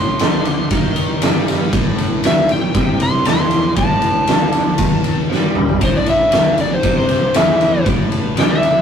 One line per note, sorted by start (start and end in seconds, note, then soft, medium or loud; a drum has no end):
0.00 0.17 A1 medium
0.00 0.20 A2 loud
0.00 1.20 C6 medium
0.19 0.68 D2 medium
0.19 0.71 D3 loud
0.19 snare loud
0.19 ride medium
0.45 ride medium
0.71 1.19 D#2 medium
0.71 1.21 D#3 loud
0.71 kick medium
0.71 ride medium
0.96 ride medium
1.22 1.70 G2 medium
1.22 1.72 G3 medium
1.22 snare loud
1.22 ride loud
1.48 snare soft
1.48 ride medium
1.73 2.21 A1 medium
1.73 2.23 A2 medium
1.73 kick loud
1.73 ride medium
1.98 ride medium
2.24 2.48 D2 medium
2.24 2.49 D3 medium
2.24 2.50 E5 medium
2.24 snare loud
2.24 ride medium
2.49 2.74 A1 medium
2.49 2.70 A2 medium
2.49 3.00 G5 medium
2.49 ride medium
2.75 3.22 C2 medium
2.75 3.25 C3 loud
2.75 kick loud
2.75 ride medium
3.00 3.27 C6 medium
3.00 ride medium
3.25 3.73 E2 medium
3.25 3.77 E3 medium
3.25 3.77 C6 medium
3.25 snare loud
3.25 ride medium
3.51 ride medium
3.76 4.25 A1 medium
3.76 4.28 A2 loud
3.76 5.27 A5 loud
3.76 kick loud
3.76 ride medium
4.02 ride medium
4.27 4.76 D2 medium
4.27 4.79 D3 loud
4.27 snare loud
4.27 ride medium
4.52 ride medium
4.78 5.27 D#2 medium
4.78 5.30 D#3 loud
4.78 kick medium
4.78 ride medium
5.04 ride medium
5.30 5.78 G2 medium
5.30 5.81 G3 loud
5.30 snare medium
5.55 mid tom medium
5.69 floor tom medium
5.81 6.29 A1 medium
5.81 6.32 A2 loud
5.81 5.95 C5 loud
5.81 kick medium
5.81 ride medium
5.97 6.08 D5 medium
6.06 6.58 E5 medium
6.06 ride medium
6.32 6.57 D2 medium
6.32 6.58 D3 loud
6.32 snare loud
6.32 ride loud
6.58 6.83 A1 medium
6.58 6.79 A2 medium
6.58 6.72 D5 medium
6.58 ride medium
6.74 6.96 C5 medium
6.83 7.32 C2 medium
6.83 7.34 C3 loud
6.83 kick medium
6.83 ride medium
6.98 7.35 C5 medium
7.09 snare soft
7.09 ride medium
7.34 7.83 E2 medium
7.34 7.85 E3 loud
7.34 7.86 E5 medium
7.34 snare loud
7.34 ride medium
7.61 ride medium
7.86 8.34 A1 medium
7.86 8.37 A2 medium
7.86 kick medium
7.86 ride medium
8.12 ride medium
8.37 8.82 D2 medium
8.37 8.82 D3 loud
8.37 8.52 G5 loud
8.37 snare loud
8.37 ride medium
8.51 8.82 E5 medium
8.63 ride medium